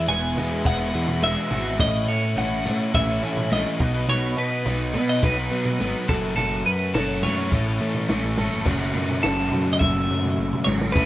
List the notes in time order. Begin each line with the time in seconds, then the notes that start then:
Already playing: E2
0.08 E1 E2 B2 E3 G#3 B3 E4 G#5, floor tom
0.36 E2 E3 G#3 B3 E4, floor tom
0.50 E3 G#3 B3 E4
0.65 E1 B3 F#5, kick, floor tom
0.79 E3 G#3 B3 E4
0.93 E2 E3 G#3 B3 E4
1.08 floor tom
1.22 E1 E2 B2 E3 G#3 B3 E4 E5, mid tom
1.50 G#1 E3 G#3 B3 E4 F#4, floor tom
1.65 E3 G#3 B3 E4
1.79 A1 A2 E3 A3 C#4 E4 D#5, kick, floor tom
2.08 A2 E3 A3 C#4 E4 C#5
2.21 A3 C#4 E4
2.36 A1 A2 E3 A3 C#4 E4 F#5, floor tom
2.64 A2 E3 A3 C#4 E4, floor tom
2.79 A3 C#4 E4
2.94 A1 C#4 E5, kick, floor tom
3.08 A3 C#4 E4
3.22 A2 E3 A3 C#4 E4
3.37 floor tom
3.50 A#1 A2 E3 A3 C#4 E4 D#5, mid tom
3.79 B1 B2 F#3 B3 D#4 F#4, kick, floor tom
3.94 B3 D#4 F#4
4.08 B1 B2 F#3 B3 D#4 F#4 C#5, floor tom
4.37 B2 F#3 B3 D#4 F#4 B4
4.50 B3 D#4 F#4
4.65 B1 B2 F#3 B3 D#4 F#4, floor tom
4.93 B2 F#3 B3 D#4 F#4, floor tom
5.08 B3 D#4 F#4 D#5
5.23 B1 D#4 B4, kick, floor tom
5.37 B3 D#4 F#4
5.51 B2 F#3 B3 D#4 F#4
5.65 floor tom
5.79 G#1 B2 F#3 B3 D#4 F#4, mid tom
6.08 F#1 F#2 C#3 F#3 A3 C#4 F#4 A4, kick, floor tom
6.22 F#3 A3 C#4 F#4
6.36 F#1 F#2 C#3 F#3 A3 C#4 F#4 A4, floor tom
6.65 F#2 F#3 A3 C#4 F#4 B4
6.79 F#3 A3 C#4 F#4
6.93 F#1 F#2 C#3 F#3 A3 C#4 F#4 A4, snare, floor tom
7.23 F#2 F#3 A3 C#4 F#4 C#5, floor tom, mid tom
7.37 F#3 A3 C#4 F#4
7.52 A1 A2 E3 A3 C#4 A4, kick, floor tom
7.66 A3 C#4 A4
7.80 A2 E3 A3 C#4 A4
7.95 floor tom
8.08 A1 A2 E3 A3 C#4 A4, snare, mid tom
8.24 A1
8.37 G#1 E3 A3 C#4 A4, floor tom, mid tom
8.51 F#1 A3 C#4 A4
8.65 F#1 F#2 C#3 F#3 A3 C#4 F#4, kick, floor tom, crash
8.94 F#2, floor tom
9.09 floor tom
9.23 F#1 A4, snare
9.52 F#2, floor tom
9.73 D#5
9.79 F#1 E5, kick, floor tom
10.11 F#2
10.24 floor tom
10.38 F#1
10.53 floor tom
10.64 G#1 F#2 C#3 F#3 A3 C#4 F#4 C#5, mid tom
10.81 mid tom
10.92 A1 A2 E3 A3 B4, kick, floor tom
10.97 C#4 E4